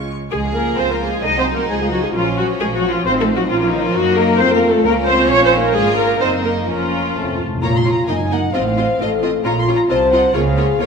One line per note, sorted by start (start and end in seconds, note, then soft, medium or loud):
0.00 0.11 C#2 soft
0.00 0.12 C#3 soft
0.00 0.10 G#3 soft
0.00 0.12 F4 soft
0.00 0.12 C#5 soft
0.31 0.73 C#2 medium
0.31 1.20 F3 soft
0.31 0.54 G#3 medium
0.31 0.39 G#4 medium
0.31 1.66 G#4 medium
0.31 0.76 G#4 medium
0.31 0.43 G#5 medium
0.45 0.56 F5 soft
0.54 0.78 A#3 medium
0.54 0.78 A#4 medium
0.54 0.68 G#5 soft
0.68 0.79 F5 medium
0.77 1.18 C#2 medium
0.77 0.94 C4 medium
0.77 1.25 F4 medium
0.77 0.93 C5 medium
0.77 0.90 G#5 soft
0.91 1.09 A#3 medium
0.91 1.09 A#4 medium
0.91 1.02 F5 soft
1.01 1.13 G#5 soft
1.08 1.24 G#3 medium
1.08 1.24 G#4 medium
1.13 1.24 F5 soft
1.23 1.64 C2 medium
1.23 1.70 F#3 medium
1.23 2.13 D#4 medium
1.23 1.40 D#4 medium
1.23 1.39 D#5 medium
1.23 1.35 G#5 soft
1.35 1.45 C4 medium
1.35 1.47 F#5 soft
1.40 1.46 C5 medium
1.46 1.58 G#5 soft
1.55 1.61 A#3 medium
1.55 1.70 A#4 medium
1.55 1.70 F#5 soft
1.69 2.10 C#2 medium
1.69 3.51 F3 medium
1.69 1.80 G#3 medium
1.69 2.16 F4 medium
1.69 1.80 G#4 medium
1.69 1.81 G#5 soft
1.81 1.93 G#3 medium
1.81 1.92 G#4 medium
1.81 1.93 F5 soft
1.91 2.03 F#3 soft
1.91 2.03 F#4 medium
1.91 2.04 G#5 soft
2.03 2.08 G#3 medium
2.03 2.08 G#4 medium
2.03 2.16 F5 soft
2.14 2.55 A#1 medium
2.14 2.23 F3 medium
2.14 3.05 C#4 medium
2.14 3.07 C#4 medium
2.14 2.37 F4 medium
2.14 2.26 A#4 medium
2.27 2.38 C#5 soft
2.38 2.46 F#3 medium
2.38 2.46 F#4 medium
2.38 2.50 A#4 soft
2.49 2.61 C#5 medium
2.60 3.01 A#1 medium
2.60 2.67 G#3 medium
2.60 2.67 G#4 medium
2.60 2.72 A#4 soft
2.73 2.91 F#3 medium
2.73 2.91 F#4 medium
2.73 2.84 C#5 soft
2.84 2.95 A#4 medium
2.91 3.06 F3 medium
2.91 3.06 F4 medium
2.96 3.07 C#5 soft
3.05 3.45 A1 medium
3.05 3.50 C4 medium
3.05 3.21 C4 medium
3.05 3.51 D#4 medium
3.05 3.12 C5 loud
3.05 3.17 F5 medium
3.16 3.28 D#5 medium
3.21 3.36 A3 medium
3.21 3.27 A4 medium
3.28 3.40 F5 soft
3.35 3.51 F#3 medium
3.35 3.42 F#4 medium
3.40 3.51 D#5 medium
3.50 3.90 A#1 medium
3.50 3.55 F3 medium
3.50 3.95 F3 medium
3.50 4.41 A#3 medium
3.50 3.96 C#4 medium
3.50 3.60 F4 medium
3.50 3.61 A#4 medium
3.61 3.66 F3 medium
3.61 3.73 F4 medium
3.61 3.74 C#5 medium
3.72 3.84 D#3 medium
3.72 3.84 D#4 medium
3.72 3.84 A#4 medium
3.83 3.95 F3 medium
3.83 3.95 F4 medium
3.83 3.96 C#5 soft
3.95 4.37 F#2 medium
3.95 4.18 F#3 medium
3.95 4.39 A#3 medium
3.95 4.39 D#4 medium
3.95 4.18 F#4 medium
3.95 4.38 D#5 medium
4.18 4.40 A#3 medium
4.18 4.41 A#4 medium
4.40 4.86 F2 medium
4.40 4.86 A3 medium
4.40 4.86 C4 medium
4.40 4.56 C4 medium
4.40 4.86 F4 medium
4.40 4.55 C5 loud
4.40 4.85 F5 medium
4.55 4.71 A#3 medium
4.55 4.70 A#4 medium
4.70 4.86 A3 medium
4.70 4.85 A4 medium
4.85 5.30 C#2 medium
4.85 4.94 A#3 medium
4.85 5.31 A#3 medium
4.85 5.74 C#4 medium
4.85 5.31 F4 medium
4.85 4.93 A#4 loud
4.85 6.19 F5 medium
5.07 5.31 C4 medium
5.07 5.30 C5 medium
5.30 5.76 A#1 medium
5.30 5.75 A#3 medium
5.30 5.46 C#4 medium
5.30 5.54 F4 medium
5.30 5.45 C#5 loud
5.45 5.61 C4 medium
5.45 5.60 C5 medium
5.53 5.76 D#4 medium
5.60 5.76 A#3 medium
5.60 5.75 A#4 medium
5.74 6.22 G#1 medium
5.74 5.98 G#3 medium
5.74 6.21 A#3 medium
5.74 6.22 D4 medium
5.74 6.20 F4 medium
5.74 5.98 G#4 loud
5.98 6.22 A#3 medium
5.98 6.21 A#4 medium
6.20 6.68 F#1 medium
6.20 6.68 A#3 medium
6.20 6.44 C4 medium
6.20 6.67 D#4 medium
6.20 6.69 D#4 medium
6.20 6.29 C5 medium
6.20 6.68 D#5 medium
6.44 6.69 A#3 medium
6.44 6.52 A#4 medium
6.68 7.14 F1 medium
6.68 7.39 F3 medium
6.68 7.16 A#3 medium
6.68 7.39 C#4 medium
6.68 7.16 C#4 medium
6.68 7.38 F4 medium
6.68 7.15 A#5 soft
7.15 7.23 F1 medium
7.15 7.22 F2 soft
7.15 7.40 A3 medium
7.15 7.40 C4 medium
7.15 7.42 A5 soft
7.23 7.31 F2 soft
7.32 7.38 F2 soft
7.39 7.45 F2 soft
7.47 7.53 F2 medium
7.54 7.61 F2 medium
7.62 8.03 A#1 medium
7.62 8.03 A#2 medium
7.62 7.70 A#3 medium
7.62 7.70 F4 soft
7.62 8.06 F4 medium
7.62 7.71 A#4 medium
7.62 7.71 C#5 medium
7.62 7.77 A#5 medium
7.77 7.93 C6 medium
7.85 7.93 A#3 medium
7.85 7.94 F4 soft
7.85 7.94 A#4 soft
7.85 7.93 C#5 soft
7.93 8.08 A#5 medium
8.07 8.49 F#1 medium
8.07 8.49 F#2 medium
8.07 8.16 A#3 medium
8.07 8.16 D#4 medium
8.07 8.55 D#4 medium
8.07 8.15 A#4 medium
8.07 8.16 D#5 medium
8.07 8.31 G#5 medium
8.31 8.39 A#3 soft
8.31 8.39 D#4 soft
8.31 8.39 A#4 medium
8.31 8.40 D#5 medium
8.31 8.55 F#5 medium
8.53 8.95 A1 medium
8.53 8.95 A2 medium
8.53 8.62 C4 medium
8.53 8.61 F4 medium
8.53 8.62 F4 medium
8.53 8.99 C5 medium
8.53 8.62 D#5 medium
8.53 9.23 F5 medium
8.77 8.86 C4 medium
8.77 8.85 F4 soft
8.77 8.85 F4 medium
8.77 8.86 D#5 soft
8.99 9.40 A1 medium
8.99 9.40 A2 medium
8.99 9.08 C4 medium
8.99 9.09 F4 medium
8.99 9.10 F4 medium
8.99 9.46 A4 medium
8.99 9.10 D#5 medium
9.22 9.31 C4 soft
9.22 9.30 F4 medium
9.22 9.31 F4 soft
9.22 9.31 D#5 medium
9.44 9.85 A#1 medium
9.44 9.85 A#2 medium
9.44 9.52 C#4 medium
9.44 9.52 F4 medium
9.44 9.90 F4 medium
9.44 9.53 F4 medium
9.44 9.54 C#5 medium
9.44 9.59 A#5 medium
9.60 9.66 C6 medium
9.68 9.76 C#4 soft
9.68 9.76 F4 medium
9.68 9.76 C#5 soft
9.76 9.82 A#5 medium
9.89 10.30 C2 medium
9.89 10.30 C3 medium
9.89 9.98 C4 medium
9.89 9.97 F4 medium
9.89 9.99 F4 soft
9.89 10.35 C5 medium
9.89 9.98 D#5 medium
9.89 10.13 A5 medium
10.12 10.20 C4 medium
10.12 10.20 F4 medium
10.12 10.21 F4 medium
10.12 10.21 D#5 medium
10.12 10.35 F#5 medium
10.34 10.75 C#2 medium
10.34 10.76 C#3 medium
10.34 10.43 A#3 medium
10.34 10.42 F4 medium
10.34 10.79 G#4 medium
10.34 10.42 C#5 medium
10.34 10.86 F5 medium
10.57 10.65 A#3 medium
10.57 10.65 F4 medium
10.57 10.66 F4 soft
10.57 10.66 C#5 medium
10.79 10.86 C#2 medium
10.79 10.86 C#3 medium
10.79 10.86 A#3 medium
10.79 10.86 F4 medium
10.79 10.86 A#4 medium
10.79 10.86 C#5 medium